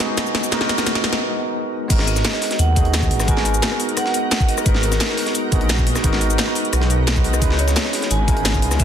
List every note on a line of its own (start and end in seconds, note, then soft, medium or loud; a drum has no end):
0.00 0.50 G#3 medium
0.00 1.17 G#3 medium
0.00 0.51 B3 medium
0.00 1.17 B3 medium
0.00 0.52 D#4 medium
0.00 0.53 F#4 medium
0.00 1.17 F#4 medium
0.00 0.13 G#4 loud
0.00 0.54 A#4 loud
0.00 1.91 B4 loud
0.00 1.17 D#5 medium
0.00 1.17 A#5 medium
0.00 snare medium
0.00 closed hi-hat medium
0.00 shaker soft
0.18 snare medium
0.18 closed hi-hat medium
0.18 shaker soft
0.26 shaker soft
0.35 snare medium
0.35 open hi-hat medium
0.44 shaker medium
0.50 1.35 G#3 loud
0.50 1.36 B3 medium
0.50 1.36 D#4 medium
0.50 1.37 F#4 medium
0.50 snare loud
0.50 closed hi-hat medium
0.50 shaker soft
0.54 1.37 A#4 loud
0.61 snare medium
0.69 snare loud
0.69 closed hi-hat medium
0.69 shaker soft
0.78 snare medium
0.78 shaker medium
0.87 snare loud
0.87 closed hi-hat medium
0.87 shaker soft
0.95 snare medium
0.95 closed hi-hat soft
1.04 snare loud
1.04 open hi-hat medium
1.13 snare medium
1.13 closed hi-hat soft
1.88 2.23 G#1 loud
1.88 2.73 G#3 medium
1.88 2.74 B3 medium
1.88 8.84 B3 medium
1.88 2.74 D#4 medium
1.88 7.38 D#4 medium
1.88 7.38 F#4 medium
1.88 2.75 F#4 medium
1.88 7.38 A#4 loud
1.88 kick loud
1.88 closed hi-hat medium
1.88 closed hi-hat loud
1.88 crash loud
1.88 shaker soft
1.92 2.75 A#4 loud
1.99 snare soft
2.07 2.61 D#5 loud
2.07 closed hi-hat medium
2.07 shaker soft
2.16 snare soft
2.16 shaker medium
2.25 snare loud
2.25 closed hi-hat medium
2.25 closed hi-hat loud
2.25 shaker soft
2.33 snare medium
2.42 snare soft
2.42 open hi-hat medium
2.51 snare soft
2.51 closed hi-hat soft
2.59 3.12 D#2 loud
2.59 3.30 F#5 loud
2.59 closed hi-hat medium
2.59 closed hi-hat loud
2.59 shaker soft
2.75 2.88 G#3 medium
2.75 2.88 B3 medium
2.75 2.88 D#4 medium
2.75 2.88 F#4 medium
2.75 2.89 G#4 loud
2.75 kick loud
2.75 closed hi-hat medium
2.75 shaker soft
2.85 closed hi-hat soft
2.94 snare loud
2.94 closed hi-hat medium
2.94 closed hi-hat loud
2.94 shaker soft
3.02 kick medium
3.02 shaker soft
3.11 3.26 G#1 loud
3.11 closed hi-hat medium
3.11 open hi-hat medium
3.20 cross-stick medium
3.20 snare soft
3.20 shaker medium
3.26 3.61 G#1 loud
3.26 4.11 G#3 loud
3.26 4.12 B3 medium
3.26 4.12 D#4 medium
3.26 4.13 F#4 medium
3.26 3.76 G#5 loud
3.26 kick loud
3.26 closed hi-hat medium
3.26 closed hi-hat loud
3.26 shaker soft
3.31 4.13 A#4 loud
3.37 snare soft
3.45 closed hi-hat medium
3.45 shaker soft
3.54 closed hi-hat soft
3.54 shaker medium
3.62 snare loud
3.62 closed hi-hat medium
3.62 shaker soft
3.72 cross-stick soft
3.80 closed hi-hat medium
3.80 open hi-hat medium
3.80 shaker soft
3.89 closed hi-hat soft
3.97 4.30 F#5 loud
3.97 cross-stick medium
3.97 closed hi-hat medium
3.97 shaker soft
4.06 snare soft
4.14 closed hi-hat medium
4.14 shaker soft
4.31 4.49 F#5 loud
4.31 snare loud
4.31 closed hi-hat medium
4.31 shaker soft
4.40 kick loud
4.40 shaker soft
4.49 4.66 D#5 loud
4.49 closed hi-hat medium
4.49 open hi-hat medium
4.58 cross-stick soft
4.58 shaker medium
4.64 4.99 G#1 loud
4.64 5.49 G#3 medium
4.64 5.50 B3 medium
4.64 5.50 D#4 medium
4.64 5.51 F#4 medium
4.64 4.82 B4 medium
4.64 kick loud
4.64 closed hi-hat medium
4.64 shaker soft
4.68 5.51 A#4 loud
4.75 snare soft
4.83 5.31 A#4 medium
4.83 closed hi-hat medium
4.83 shaker soft
4.92 snare soft
4.92 shaker medium
5.00 snare loud
5.00 closed hi-hat medium
5.00 shaker soft
5.09 snare medium
5.17 snare soft
5.17 open hi-hat medium
5.26 snare soft
5.26 closed hi-hat soft
5.35 closed hi-hat medium
5.35 shaker soft
5.51 5.94 A#1 medium
5.51 5.63 G#3 medium
5.51 5.64 B3 medium
5.51 5.64 D#4 medium
5.51 5.64 F#4 medium
5.51 5.65 G#4 loud
5.51 kick loud
5.51 closed hi-hat medium
5.51 shaker soft
5.61 closed hi-hat soft
5.69 snare loud
5.69 closed hi-hat medium
5.69 shaker soft
5.78 kick medium
5.78 shaker soft
5.87 closed hi-hat medium
5.87 open hi-hat medium
5.95 cross-stick soft
5.95 snare soft
5.95 shaker medium
6.02 6.37 G#1 loud
6.02 6.87 G#3 loud
6.02 6.88 B3 medium
6.02 6.88 D#4 medium
6.02 6.89 F#4 medium
6.02 kick loud
6.02 closed hi-hat medium
6.02 shaker soft
6.06 6.89 A#4 loud
6.13 snare soft
6.21 closed hi-hat medium
6.21 shaker soft
6.30 closed hi-hat soft
6.30 shaker medium
6.38 snare loud
6.38 closed hi-hat medium
6.38 shaker soft
6.48 cross-stick soft
6.55 closed hi-hat medium
6.55 open hi-hat medium
6.55 shaker soft
6.65 closed hi-hat soft
6.73 7.40 B1 medium
6.73 cross-stick medium
6.73 closed hi-hat medium
6.73 shaker soft
6.82 snare soft
6.90 closed hi-hat medium
6.90 shaker soft
7.07 snare loud
7.07 closed hi-hat medium
7.07 shaker soft
7.15 7.38 G#3 medium
7.15 7.40 B3 medium
7.15 7.40 D#4 medium
7.15 7.40 F#4 medium
7.15 7.40 B4 medium
7.15 kick loud
7.15 shaker soft
7.24 closed hi-hat medium
7.24 open hi-hat medium
7.34 cross-stick soft
7.34 shaker medium
7.39 7.75 C#2 loud
7.39 8.84 E3 medium
7.39 8.25 G#3 medium
7.39 8.25 C#4 medium
7.39 8.26 D#4 medium
7.39 8.26 E4 medium
7.39 8.84 G#4 medium
7.39 8.84 D#6 medium
7.39 kick loud
7.39 closed hi-hat medium
7.39 shaker medium
7.44 8.27 B4 loud
7.50 snare soft
7.59 8.12 C#5 loud
7.59 closed hi-hat medium
7.59 shaker soft
7.68 snare soft
7.68 shaker medium
7.76 snare loud
7.76 closed hi-hat medium
7.76 shaker medium
7.85 snare medium
7.93 snare medium
7.93 open hi-hat medium
8.02 snare soft
8.02 closed hi-hat soft
8.11 8.64 G#1 loud
8.11 8.82 G#5 loud
8.11 closed hi-hat medium
8.11 shaker medium
8.27 8.39 G#3 medium
8.27 8.39 C#4 medium
8.27 8.40 D#4 medium
8.27 8.40 E4 medium
8.27 8.40 A#4 loud
8.27 kick loud
8.27 closed hi-hat medium
8.27 shaker soft
8.37 closed hi-hat soft
8.45 snare loud
8.45 closed hi-hat medium
8.45 shaker soft
8.54 kick medium
8.54 shaker soft
8.62 8.78 C#2 loud
8.62 closed hi-hat medium
8.62 open hi-hat medium
8.71 cross-stick soft
8.71 snare soft
8.71 shaker medium
8.78 8.84 C#2 loud
8.78 8.84 G#3 loud
8.78 8.84 B3 medium
8.78 8.84 C#4 medium
8.78 8.84 E4 medium
8.78 8.84 E5 loud
8.78 kick loud
8.78 closed hi-hat medium
8.78 closed hi-hat loud
8.78 shaker medium